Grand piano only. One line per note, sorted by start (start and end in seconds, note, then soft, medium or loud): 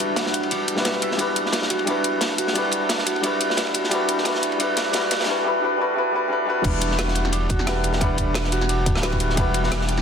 0.00 0.75 G3 medium
0.00 0.76 D4 medium
0.00 0.77 E4 medium
0.00 0.78 F#4 medium
0.00 0.79 B4 loud
0.00 2.57 F#5 medium
0.75 1.15 G3 medium
0.75 1.16 D4 medium
0.75 1.17 E4 medium
0.75 1.18 F#4 medium
0.79 1.18 B4 medium
1.17 1.83 G3 medium
1.17 1.84 D4 medium
1.17 1.86 E4 medium
1.17 1.87 F#4 medium
1.21 1.87 B4 medium
1.85 2.52 G3 medium
1.85 2.53 D4 medium
1.85 2.54 E4 medium
1.85 2.55 F#4 medium
1.89 2.55 B4 medium
2.53 3.20 G3 medium
2.53 3.21 D4 medium
2.53 3.22 E4 medium
2.53 3.23 F#4 medium
2.58 3.23 B4 loud
3.21 3.88 G3 medium
3.21 3.89 D4 medium
3.21 3.90 E4 medium
3.21 3.91 F#4 medium
3.26 3.92 B4 loud
3.89 4.22 G3 medium
3.89 4.23 D4 medium
3.89 4.24 E4 medium
3.89 4.25 F#4 medium
3.94 4.26 B4 loud
4.23 4.56 G3 medium
4.23 4.57 D4 medium
4.23 4.58 E4 medium
4.23 4.59 F#4 medium
4.28 4.60 B4 loud
4.58 4.90 G3 medium
4.58 4.91 D4 medium
4.58 4.93 E4 medium
4.58 4.93 F#4 medium
4.62 4.94 B4 loud
4.92 5.24 G3 medium
4.92 5.25 D4 medium
4.92 5.26 E4 medium
4.92 5.27 F#4 medium
4.96 5.28 B4 loud
5.26 5.41 G3 loud
5.26 5.43 D4 medium
5.26 5.44 E4 medium
5.26 5.44 F#4 medium
5.30 5.45 B4 loud
5.43 5.59 G3 loud
5.43 5.60 D4 medium
5.43 5.61 E4 medium
5.43 5.62 F#4 medium
5.47 5.62 B4 loud
5.60 5.76 G3 loud
5.60 5.77 D4 medium
5.60 5.78 E4 medium
5.60 5.79 F#4 medium
5.65 5.79 B4 loud
5.77 5.92 G3 medium
5.77 5.93 D4 medium
5.77 5.95 E4 medium
5.77 5.96 F#4 medium
5.82 5.96 B4 loud
5.94 6.10 G3 medium
5.94 6.11 D4 medium
5.94 6.12 E4 medium
5.94 6.13 F#4 medium
5.98 6.13 B4 loud
6.11 6.27 G3 medium
6.11 6.28 D4 medium
6.11 6.29 E4 medium
6.11 6.30 F#4 medium
6.16 6.30 B4 loud
6.28 6.44 G3 medium
6.28 6.45 D4 medium
6.28 6.46 E4 medium
6.28 6.47 F#4 medium
6.33 6.47 B4 loud
6.45 6.61 G3 loud
6.45 6.62 D4 medium
6.45 6.63 E4 medium
6.45 6.64 F#4 medium
6.50 6.64 B4 loud
6.62 7.64 G3 medium
6.62 7.64 D4 medium
6.67 7.66 B4 loud
7.66 7.97 G3 medium
7.66 7.98 D4 medium
7.66 7.99 E4 medium
7.66 8.00 B4 loud
7.66 7.99 F#5 medium
7.99 9.00 G3 medium
7.99 9.01 D4 medium
7.99 9.01 E4 medium
7.99 9.02 F#5 medium
8.03 9.02 B4 loud
9.02 9.34 G3 medium
9.02 9.35 D4 medium
9.02 9.35 E4 medium
9.02 9.36 F#4 medium
9.02 9.36 B4 loud
9.35 10.02 G3 medium
9.35 10.02 D4 medium
9.35 10.02 E4 medium
9.35 10.02 F#5 medium
9.40 10.02 B4 loud